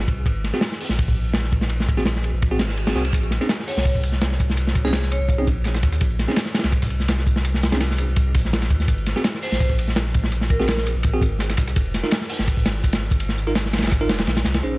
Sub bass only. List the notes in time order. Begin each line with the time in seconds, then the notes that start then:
0.08 C2
0.26 G#1
0.90 A#1
2.33 A#1
2.59 G#1
2.95 C2
3.13 A#1
3.77 C2
5.20 C2
5.47 A#1
5.83 D#2
6.01 A#1
6.64 C2
8.08 C2
8.35 A#1
8.70 D#2
8.88 G#1
9.52 A#1
10.96 A#1
11.21 G#1
11.58 C2
11.76 F1
12.39 G#1
13.83 G#1
14.09 F1
14.28 A#1
14.45 C2
14.64 A#1